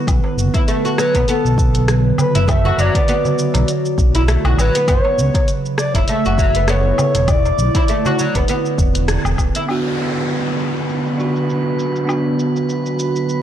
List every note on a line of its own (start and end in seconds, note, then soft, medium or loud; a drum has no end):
0.00 4.88 D3 medium
0.00 5.83 B3 medium
0.00 1.82 E4 medium
0.00 5.84 B4 medium
0.07 0.20 B1 loud
0.07 kick loud
0.07 closed hi-hat soft
0.07 low woodblock medium
0.07 shaker soft
0.21 7.28 F#3 medium
0.21 darbuka ka medium
0.37 0.50 F#1 medium
0.37 shaker medium
0.54 0.63 E4 medium
0.54 kick loud
0.54 closed hi-hat soft
0.54 darbuka ka soft
0.54 darbuka tek medium
0.54 shaker soft
0.68 0.84 A3 medium
0.68 closed hi-hat soft
0.68 shaker soft
0.85 0.98 F#4 medium
0.85 shaker soft
0.98 1.14 F#3 medium
0.98 1.26 B4 loud
0.98 cross-stick medium
0.98 shaker medium
1.15 1.24 B1 medium
1.15 1.28 B3 medium
1.15 kick medium
1.15 closed hi-hat medium
1.15 darbuka tek medium
1.15 shaker soft
1.22 5.84 F#4 medium
1.28 1.87 B3 loud
1.28 1.84 A4 loud
1.28 closed hi-hat soft
1.28 shaker soft
1.45 2.12 B1 medium
1.45 shaker soft
1.58 kick loud
1.58 shaker medium
1.75 closed hi-hat medium
1.75 shaker soft
1.88 cross-stick medium
1.88 closed hi-hat soft
1.88 shaker soft
2.18 2.47 B4 medium
2.18 darbuka tek medium
2.18 darbuka dum medium
2.18 low woodblock medium
2.18 shaker medium
2.35 2.72 F#1 medium
2.35 2.43 E4 medium
2.35 closed hi-hat medium
2.35 darbuka ka medium
2.35 shaker soft
2.47 2.64 A3 medium
2.47 2.81 E5 loud
2.47 kick loud
2.47 closed hi-hat soft
2.47 darbuka dum medium
2.47 low woodblock medium
2.47 shaker soft
2.65 2.78 F#4 medium
2.65 darbuka ka medium
2.78 2.90 F#1 medium
2.78 2.93 F#3 medium
2.78 3.69 D5 loud
2.78 shaker medium
2.95 3.08 B3 medium
2.95 kick loud
2.95 closed hi-hat medium
2.95 darbuka ka soft
2.95 darbuka tek medium
2.95 shaker soft
3.08 3.67 B3 loud
3.08 closed hi-hat soft
3.08 shaker soft
3.25 darbuka dum medium
3.25 shaker soft
3.39 shaker medium
3.54 3.64 B1 medium
3.54 closed hi-hat medium
3.54 darbuka tek medium
3.54 shaker soft
3.68 closed hi-hat soft
3.68 shaker soft
3.85 shaker soft
3.98 4.37 B1 loud
3.98 kick loud
3.98 shaker medium
4.15 4.23 E4 medium
4.15 closed hi-hat medium
4.15 shaker soft
4.28 4.44 A3 medium
4.28 cross-stick medium
4.28 closed hi-hat soft
4.28 shaker soft
4.45 4.54 B1 medium
4.45 4.58 F#4 medium
4.45 low woodblock medium
4.58 4.70 A1 medium
4.58 4.74 F#3 medium
4.58 4.90 B4 loud
4.58 low woodblock medium
4.58 shaker medium
4.75 4.87 B3 medium
4.75 closed hi-hat medium
4.75 shaker soft
4.88 5.00 F#1 medium
4.88 7.28 C#3 medium
4.88 5.47 B3 medium
4.88 5.48 C#5 loud
4.88 kick loud
4.88 closed hi-hat soft
4.88 low woodblock medium
4.88 shaker soft
5.05 darbuka ka medium
5.18 5.30 C#2 medium
5.18 shaker medium
5.34 kick medium
5.34 closed hi-hat medium
5.34 darbuka ka soft
5.34 darbuka tek medium
5.34 shaker soft
5.48 closed hi-hat soft
5.48 shaker soft
5.66 shaker soft
5.70 7.28 A3 medium
5.77 11.56 E4 medium
5.77 5.92 D5 loud
5.77 cross-stick medium
5.77 shaker medium
5.94 6.04 F#1 loud
5.94 6.03 E4 medium
5.94 8.25 A4 medium
5.94 kick medium
5.94 closed hi-hat medium
5.94 darbuka tek medium
5.94 shaker soft
6.08 6.24 A3 medium
6.08 6.71 E5 loud
6.08 closed hi-hat soft
6.08 shaker soft
6.25 6.92 F#1 medium
6.25 6.38 F#4 medium
6.25 shaker soft
6.38 6.53 F#3 medium
6.38 kick loud
6.38 shaker medium
6.55 6.68 B3 medium
6.55 closed hi-hat medium
6.55 shaker soft
6.68 7.27 B3 loud
6.68 7.29 C#5 loud
6.68 cross-stick medium
6.68 closed hi-hat soft
6.68 shaker soft
6.98 darbuka tek medium
6.98 darbuka dum medium
6.98 low woodblock medium
6.98 shaker medium
7.15 7.52 E1 medium
7.15 closed hi-hat medium
7.15 darbuka ka medium
7.15 shaker soft
7.28 13.42 D3 medium
7.28 8.45 D5 loud
7.28 kick loud
7.28 closed hi-hat soft
7.28 darbuka dum medium
7.28 low woodblock medium
7.28 shaker soft
7.45 darbuka ka medium
7.45 shaker soft
7.58 7.70 B1 medium
7.58 shaker medium
7.75 7.83 E4 medium
7.75 kick loud
7.75 closed hi-hat medium
7.75 darbuka ka soft
7.75 darbuka tek medium
7.75 shaker soft
7.88 8.05 A3 medium
7.88 closed hi-hat soft
7.88 shaker soft
8.05 8.18 F#4 medium
8.05 darbuka tek medium
8.05 darbuka dum medium
8.05 shaker soft
8.19 8.34 F#3 medium
8.19 shaker medium
8.35 8.44 E1 loud
8.35 8.48 B3 medium
8.35 13.42 B3 medium
8.35 13.42 B4 medium
8.35 kick medium
8.35 closed hi-hat medium
8.35 darbuka tek medium
8.35 shaker soft
8.48 9.07 B3 loud
8.48 closed hi-hat soft
8.48 shaker soft
8.66 shaker soft
8.78 9.17 E1 loud
8.78 kick medium
8.78 shaker medium
8.95 closed hi-hat medium
8.95 shaker soft
9.08 cross-stick medium
9.08 closed hi-hat soft
9.08 shaker soft
9.25 9.35 E1 medium
9.25 low woodblock medium
9.25 shaker soft
9.38 9.50 D1 medium
9.38 kick medium
9.38 low woodblock medium
9.38 shaker medium
9.55 9.63 E4 medium
9.55 closed hi-hat medium
9.55 shaker soft
9.67 11.14 B3 medium
9.67 11.15 D4 medium
9.67 13.42 B4 medium
9.67 downlifter medium
9.67 low woodblock medium
9.67 shaker soft
9.71 11.16 F#4 medium
9.99 shaker medium
10.16 13.42 F#3 medium
10.16 shaker soft
10.29 shaker soft
10.46 shaker soft
10.59 shaker medium
10.76 shaker soft
10.90 shaker soft
11.07 shaker soft
11.16 12.04 B3 medium
11.16 12.05 D4 medium
11.16 shaker medium
11.20 12.06 F#4 medium
11.36 13.42 F#4 medium
11.36 shaker soft
11.50 shaker soft
11.79 shaker medium
11.96 shaker soft
12.05 13.42 B3 medium
12.05 13.42 D4 medium
12.05 low woodblock medium
12.10 13.42 F#4 medium
12.10 shaker soft
12.39 shaker medium
12.56 shaker soft
12.69 shaker soft
12.86 shaker soft
12.99 shaker medium
13.16 shaker soft
13.29 shaker soft